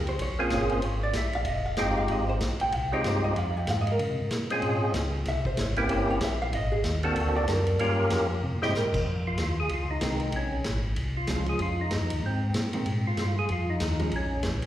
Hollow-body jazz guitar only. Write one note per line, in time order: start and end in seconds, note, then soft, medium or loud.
0.09 0.20 C5 medium
0.22 0.40 C#5 loud
0.41 0.52 F4 soft
0.54 0.72 G#4 medium
0.72 0.86 C5 medium
0.86 1.03 C#5 medium
1.03 1.15 D5 medium
1.17 1.35 E5 medium
1.35 1.47 F5 loud
1.48 1.65 D#5 medium
1.66 1.80 F5 medium
1.80 1.97 G5 loud
1.98 2.09 F5 medium
2.12 2.29 D#5 medium
2.29 2.37 C5 loud
2.61 2.75 G5 medium
2.75 2.93 F5 medium
2.93 3.05 C#5 medium
3.06 3.24 C5 medium
3.24 3.36 D#5 medium
3.38 3.57 F5 medium
3.57 3.68 G5 loud
3.70 3.79 F5 medium
3.81 3.90 D#5 medium
3.92 4.67 A#4 medium
5.28 5.46 E5 medium
5.47 5.58 C5 loud
5.60 5.78 C#5 medium
5.79 5.90 B4 medium
5.91 6.09 C5 medium
6.10 6.22 C#5 loud
6.24 6.41 E5 medium
6.42 6.53 F5 loud
6.55 6.73 D#5 loud
6.72 6.79 G#4 medium
7.36 7.48 D5 loud
7.50 7.78 A#4 medium
8.63 8.75 D#5 loud
8.76 8.99 A#4 medium
10.01 10.33 D#3 medium
10.01 10.33 G#3 medium
10.01 10.34 C4 medium
11.29 11.60 F3 medium
11.29 11.60 G#3 medium
11.29 11.61 C#4 medium
12.74 12.85 D#3 medium
12.74 12.85 G#3 medium
12.74 12.86 C4 medium
14.00 14.11 F3 medium
14.00 14.11 G#3 medium
14.00 14.12 C#4 medium